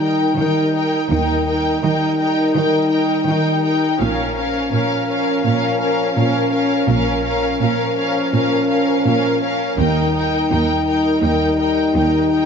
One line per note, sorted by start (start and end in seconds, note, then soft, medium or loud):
0.00 0.28 D#3 soft
0.00 0.94 G3 soft
0.00 0.94 D#4 soft
0.00 0.37 D#4 soft
0.00 0.38 A#4 soft
0.00 0.37 G5 soft
0.38 0.99 D#3 soft
0.38 0.73 D#4 soft
0.38 0.74 A#4 soft
0.38 0.73 G5 soft
0.74 1.10 D#4 soft
0.74 1.09 A#4 soft
0.74 1.09 G5 soft
1.10 1.72 D#2 soft
1.10 1.72 D#3 soft
1.10 3.96 G3 soft
1.10 1.46 D#4 soft
1.10 3.97 D#4 soft
1.10 1.46 A#4 soft
1.10 1.45 G5 soft
1.46 1.82 D#4 soft
1.46 1.81 A#4 soft
1.46 1.81 G5 soft
1.82 2.44 D#3 soft
1.82 2.18 D#4 soft
1.82 2.18 A#4 soft
1.82 2.17 G5 soft
2.18 2.53 D#4 soft
2.18 2.55 A#4 soft
2.18 2.52 G5 soft
2.53 3.17 D#3 soft
2.53 2.90 D#4 soft
2.53 2.90 A#4 soft
2.53 2.89 G5 soft
2.90 3.26 D#4 soft
2.90 3.27 A#4 soft
2.90 3.24 G5 soft
3.25 3.89 D#3 soft
3.25 3.63 D#4 soft
3.25 3.63 A#4 soft
3.25 3.62 G5 soft
3.63 3.99 D#4 soft
3.63 4.00 A#4 soft
3.63 3.99 G5 soft
4.00 4.61 A#1 soft
4.00 4.62 A#2 medium
4.00 6.86 F3 soft
4.00 4.35 C#4 soft
4.00 6.85 C#4 soft
4.00 4.36 A#4 soft
4.00 4.36 F5 soft
4.37 4.71 C#4 soft
4.37 4.70 A#4 soft
4.37 4.72 F5 soft
4.72 5.34 A#2 soft
4.72 5.06 C#4 soft
4.72 5.06 A#4 soft
4.72 5.08 F5 soft
5.08 5.44 C#4 soft
5.08 5.43 A#4 soft
5.08 5.43 F5 soft
5.44 6.06 A#2 medium
5.44 5.80 C#4 soft
5.44 5.78 A#4 soft
5.44 5.80 F5 soft
5.79 6.16 C#4 soft
5.79 6.14 A#4 soft
5.79 6.17 F5 soft
6.15 6.79 A#2 medium
6.15 6.52 C#4 soft
6.15 6.51 A#4 soft
6.15 6.52 F5 soft
6.52 6.88 C#4 soft
6.52 6.87 A#4 soft
6.52 6.88 F5 soft
6.88 7.51 A#1 medium
6.88 7.51 A#2 medium
6.88 9.61 F3 medium
6.88 7.25 C#4 soft
6.88 9.61 C#4 medium
6.88 7.24 A#4 soft
6.88 7.24 F5 soft
7.25 7.60 C#4 soft
7.25 7.60 A#4 soft
7.25 7.60 F5 soft
7.61 8.23 A#2 medium
7.61 7.97 C#4 soft
7.61 7.95 A#4 soft
7.61 7.96 F5 soft
7.96 8.33 C#4 soft
7.96 8.31 A#4 soft
7.96 8.32 F5 soft
8.32 8.95 A#2 soft
8.32 8.69 C#4 soft
8.32 8.68 A#4 soft
8.32 8.68 F5 soft
8.69 9.04 C#4 soft
8.69 9.05 A#4 soft
8.69 9.05 F5 soft
9.05 9.67 A#2 medium
9.05 9.41 C#4 soft
9.05 9.41 A#4 soft
9.05 9.41 F5 soft
9.42 9.78 C#4 soft
9.42 9.76 A#4 soft
9.42 9.78 F5 soft
9.77 10.39 D#2 medium
9.77 10.40 D#2 soft
9.77 12.46 G3 soft
9.77 12.46 D#4 medium
9.77 10.14 D#4 soft
9.77 10.12 A#4 soft
9.77 10.14 G5 soft
10.14 10.50 D#4 soft
10.14 10.47 A#4 soft
10.14 10.50 G5 soft
10.48 11.12 D#2 medium
10.48 10.86 D#4 soft
10.48 10.85 A#4 soft
10.48 10.86 G5 soft
10.86 11.22 D#4 soft
10.86 11.22 A#4 soft
10.86 11.22 G5 soft
11.23 11.84 D#2 medium
11.23 11.58 D#4 soft
11.23 11.58 A#4 soft
11.23 11.59 G5 soft
11.59 11.95 D#4 soft
11.59 11.94 A#4 soft
11.59 11.95 G5 soft
11.95 12.46 D#2 soft
11.95 12.31 D#4 soft
11.95 12.30 A#4 soft
11.95 12.30 G5 soft
12.31 12.46 D#4 soft
12.31 12.46 A#4 soft
12.31 12.46 G5 soft